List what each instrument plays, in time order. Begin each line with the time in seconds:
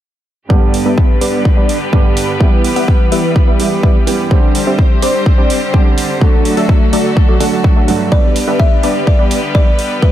0.49 felt piano G2 D3 G3 B3 G4, string section D3 G3 B3 G4 B4, supersaw synth G3 B3 D4 B4 D5, kick
0.74 open hi-hat
0.86 supersaw synth G3 B3 D4 B4 E5
0.98 kick
1.21 supersaw synth G3 B3 D4 B4 D5, open hi-hat
1.45 kick
1.57 supersaw synth G3 B3 D4 B4 D5
1.69 open hi-hat
1.92 felt piano G2 D3 G3 B3 G4, supersaw synth G3 B3 D4 B4 D5, kick
2.17 open hi-hat
2.39 felt piano E3 G3 B3 G4, string section E3, supersaw synth G3 B3 E4 B4 E5, kick
2.64 open hi-hat
2.76 supersaw synth G3 B3 E4 B4 F#5, open hi-hat
2.88 kick
3.12 supersaw synth G3 B3 E4 B4 E5, open hi-hat
3.36 kick
3.48 supersaw synth G3 B3 E4 B4 E5
3.59 felt piano E3 G3 B3 G4, open hi-hat
3.83 supersaw synth G3 B3 E4 B4 D5, kick
4.07 felt piano E3 G3 B3 G4, open hi-hat
4.30 felt piano D3 G3 C4 G4, string section D3 C4 G4 C5, supersaw synth G3 C4 D4 C5 D5, kick
4.55 open hi-hat
4.67 supersaw synth G3 C4 D4 C5 E5
4.79 kick
5.02 supersaw synth G3 C4 D4 C5 D5, open hi-hat
5.26 kick
5.38 supersaw synth G3 C4 D4 C5 D5
5.50 open hi-hat
5.73 felt piano D3 G3 C4 G4, supersaw synth G3 C4 D4 C5 D5, kick
5.98 open hi-hat
6.20 felt piano D3 F#3 A3 F#4, supersaw synth F#3 A3 D4 A4 D5, string section F#3 A3 F#4 A4, kick
6.45 open hi-hat
6.57 supersaw synth F#3 A3 D4 A4 E5, open hi-hat
6.69 kick
6.93 supersaw synth F#3 A3 D4 A4 D5, open hi-hat
7.17 kick
7.29 supersaw synth F#3 A3 D4 A4 D5
7.40 felt piano D3 F#3 A3 F#4, supersaw synth F#3 A3 D4 A4 F#5, open hi-hat
7.64 kick
7.76 supersaw synth F#3 A3 D4 A4 E5
7.88 felt piano G2 D3 F#3 A3 F#4, open hi-hat
8.12 string section D3 G3 B3 G4 B4, supersaw synth G3 B3 D4 B4 D5, kalimba D5, kick
8.36 open hi-hat
8.48 supersaw synth G3 B3 D4 B4 E5
8.60 kalimba E5, kick
8.83 supersaw synth G3 B3 D4 B4 D5, open hi-hat
9.07 kalimba D5, kick
9.19 supersaw synth G3 B3 D4 B4 D5
9.31 open hi-hat
9.55 supersaw synth G3 B3 D4 B4 D5, kalimba D5, kick
9.79 open hi-hat
10.02 string section E3, supersaw synth G3 B3 E4 B4 E5, kalimba B4, kick